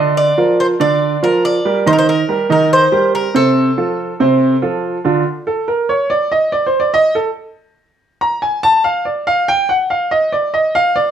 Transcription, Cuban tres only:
Already playing: D#5
0.17 D5
0.60 C5
0.81 D5
1.24 A#4
1.45 D5
1.87 C5
1.93 A#4
1.99 C5
2.09 A#4
2.52 A#4
2.73 C5
3.15 A#4
3.36 A4

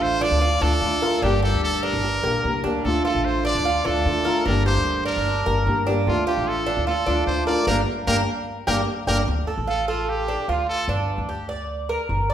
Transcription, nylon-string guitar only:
Already playing: D3 A3 D4 F4
0.41 muted nylon-string guitar stroke
0.62 A3 D4 F4
0.82 D3 A3 D4 F4
1.02 A3 D4 F4
1.22 D3 G3 A#3 D4 G4
2.04 muted nylon-string guitar stroke
2.24 G3 A#3 D4 G4
2.44 G3 A#3 D4 G4
2.64 G3 A#3 D4 G4
2.84 D3 A3 D4 F4
3.65 muted nylon-string guitar stroke
3.85 A3 D4 F4
4.05 D3 A3 D4 F4
4.26 A3 D4 F4
4.46 D3 G3 A#3 D4 G4
5.27 muted nylon-string guitar stroke
5.46 G3 A#3 D4 G4
5.66 G3 A#3 D4 G4
5.87 G3 A#3 D4 G4
6.07 D3 A3 D4 F4
6.88 muted nylon-string guitar stroke
7.07 A3 D4 F4
7.27 D3 A3 D4 F4
7.48 A3 D4 F4
7.68 G3 A#3 D4
8.08 G3 A#3 D4
8.68 G3 A#3 D4
9.08 G3 A#3 D4

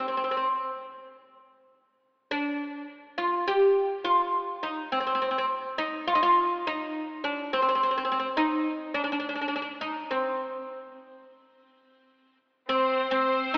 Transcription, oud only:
0.08 C4
0.17 C4
0.24 C4
0.31 C4
0.37 C4
2.31 D4
3.18 F4
3.48 G4
4.04 F4
4.63 D#4
4.92 C4
5.00 C4
5.07 C4
5.15 C4
5.22 C4
5.31 C4
5.38 C4
5.78 D#4
6.08 F4
6.15 D#4
6.23 F4
6.67 D#4
7.24 D4
7.53 C4
7.62 C4
7.69 C4
7.75 C4
7.83 C4
7.91 C4
7.98 C4
8.05 C4
8.12 C4
8.19 C4
8.37 D#4
8.94 D4
9.04 D4
9.12 D4
9.20 D4
9.29 D4
9.35 D4
9.41 D4
9.48 D4
9.56 D4
9.62 D4
9.81 D#4
10.11 C4
12.69 C4
13.11 C4
13.54 D#4

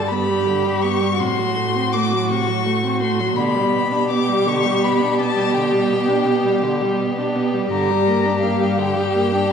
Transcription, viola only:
Already playing: G3
0.11 B3
0.29 G3
0.46 D3
0.65 G3
0.83 B3
1.01 G3
1.19 C3
1.39 F#3
1.57 A3
1.75 C4
1.94 A3
2.13 F#3
2.30 C3
2.48 F#3
2.66 A3
2.84 C4
3.01 A3
3.19 F#3
3.37 D3
3.56 G3
3.73 B3
3.92 D4
4.10 B3
4.29 G3
4.46 D3
4.65 G3
4.84 B3
5.01 D4
5.20 B3
5.36 G3
5.55 D3
5.72 G3
5.91 B3
6.08 D4
6.26 B3
6.44 G3
6.63 D3
6.82 G3
7.00 B3
7.18 D4
7.35 B3
7.54 G3
7.72 D3
7.90 G3
8.07 A#3
8.25 D4
8.43 A#3
8.60 G3
8.78 D3
8.96 G3
9.15 A#3
9.32 D4

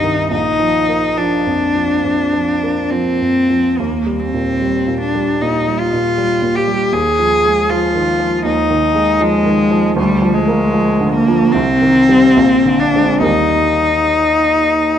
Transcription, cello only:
Already playing: D#4
0.31 D#4
1.18 D4
2.91 C4
3.78 A#3
4.19 C4
5.00 D4
5.41 D#4
5.79 F4
6.55 G4
6.93 G#4
7.70 F4
8.45 D#4
9.21 G#3
9.97 G3
10.34 G#3
11.12 A#3
11.52 C4
12.79 D4
13.23 D#4

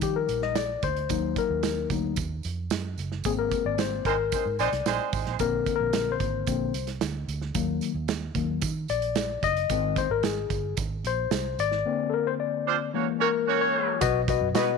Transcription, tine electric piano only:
Already playing: F3 G3 D#4
0.03 G4
0.16 A#4
0.43 D#5
0.56 D5
0.84 C5
1.10 F#3 A#3 D#4
1.38 A#4
1.91 F#3 A#3 D#4
3.25 G#3 A#3 C4 G#4
3.39 A#4
3.66 D5
3.80 C5
4.06 A#4
4.61 D5
5.40 D3 A#3 C4 A#4
5.76 A#4
6.12 C5
6.48 D3 A#3 C4
7.54 D#3 F#3 A#3
8.35 D#3 F#3 A#3
8.90 D5
9.44 D#5
9.70 D#3 G#3 C4
9.98 C5
10.11 A#4
10.25 G#4
11.07 C5
11.60 D5
11.85 D3 A#3 C4
12.10 A4 A#4
12.27 C5
12.40 D5
12.94 E3 G#3 A#3
13.22 A#4
13.61 C#5
14.01 B2 F#4 B4 D#5
14.29 F#4 B4 D#5
14.55 F#4 B4 D#5

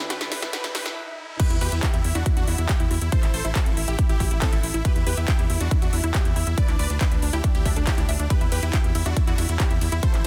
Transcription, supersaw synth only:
0.10 G4 B4
0.21 E4
0.32 G4 B4
0.42 E4
0.53 G4 B4
0.64 E4
0.75 G4 B4
0.86 E4
1.40 G4 B4
1.50 E4
1.61 G4 B4
1.72 E4
1.83 E4 G4
1.94 E4
2.04 E4
2.15 D4 F#4
2.26 E4
2.37 D4 F#4
2.48 E4
2.58 E4
2.69 E4 G4
2.80 E4
2.91 E4
3.01 E4
3.12 A4 C5
3.23 E4
3.34 A4 C5
3.45 E4
3.55 C4 A4
3.66 E4
3.77 E4
3.88 E4 G4
3.99 E4
4.09 E4 G4
4.20 E4
4.31 E4
4.42 C4 A4
4.53 E4
4.63 E4
4.74 E4
4.85 G4 B4
4.96 E4
5.07 G4 B4
5.17 E4
5.28 E4 G4
5.39 E4
5.50 E4
5.60 D4 F#4
5.71 E4
5.82 D4 F#4
5.93 E4
6.04 E4
6.15 E4 G4
6.25 E4
6.36 E4
6.47 E4
6.58 B4 D5
6.68 D4
6.79 B4 D5
6.90 D4
7.01 D4 B4
7.12 D4
7.22 D4
7.33 E4 G4
7.44 D4
7.55 E4 G4
7.66 D4
7.76 D4
7.87 E4 G4
7.98 D4
8.09 D4
8.19 D4
8.30 G4 B4
8.41 E4
8.52 G4 B4
8.63 E4
8.73 E4 G4
8.84 E4
8.95 E4
9.06 D4 F#4
9.17 E4
9.27 D4 F#4
9.38 E4
9.49 E4
9.60 E4 G4
9.70 E4
9.81 E4
9.92 E4
10.03 A4 C5
10.14 E4

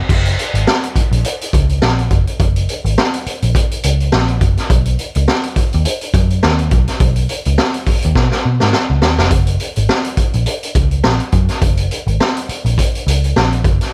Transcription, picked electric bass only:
0.09 F#1
0.54 G#1
0.96 muted picked electric bass stroke
1.11 A#1
1.54 C#2
1.83 A#1
2.11 F#1
2.40 F#1
2.85 G#1
3.26 muted picked electric bass stroke
3.43 A#1
3.84 C#2
4.13 A#1
4.41 F#1
4.70 B1
5.16 C#2
5.57 muted picked electric bass stroke
5.74 D#2
6.14 F#2
6.44 D#2
6.72 B1
7.00 B1
7.46 C#2
7.86 muted picked electric bass stroke
8.05 D#2
8.16 B2
8.45 B2
8.62 G#2
8.90 C#2
9.03 D#2
9.18 F1
9.31 F#1
9.77 G#1
10.17 muted picked electric bass stroke
10.34 A#1
10.75 C#2
11.04 A#1
11.33 F#2
11.62 F#1
12.07 G#1
12.49 muted picked electric bass stroke
12.65 A#1
13.07 C#2
13.36 A#1
13.65 F#1

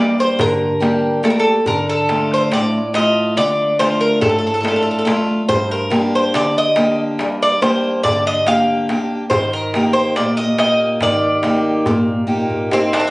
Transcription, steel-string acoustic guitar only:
Already playing: G2 G3 A#3 G4
0.39 D3
0.80 G3 A#3 G4
1.23 A3 A#3 G4
1.66 D3
2.09 A3 D4 F4
2.51 A2
2.94 A3 F4
3.38 D3
3.79 A3 D4 F4
4.21 A2
4.63 A3 D4 F4
5.05 A3 D4 F4
5.49 G2
5.90 A#3 D4 G4
6.34 D3
6.77 A#3 D4 G4
7.21 G2
7.61 A#3 D4 G4
8.04 D3
8.47 A#3 D4 G4
8.89 A#3 D4 G4
9.33 D#3
9.75 A#3 D#4 G4
10.17 A#2
10.59 A#3 D#4 G4
11.02 D#3
11.44 A#3 D#4 G4
11.87 A#2
12.27 A#3 D#4 G4
12.71 A#3 D#4 G4

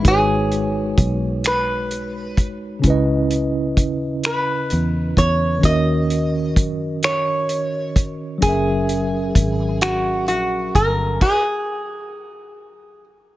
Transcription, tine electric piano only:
0.00 G#3 D#4
0.05 F#4 B4
0.10 C#5
2.79 C#3 C#4
2.85 E4 B4
2.90 D#5
5.58 D#3 C#4
5.64 F#4 A#4
5.69 D#5
8.38 F#3 C#4
8.44 G#4 A#4
8.49 E5

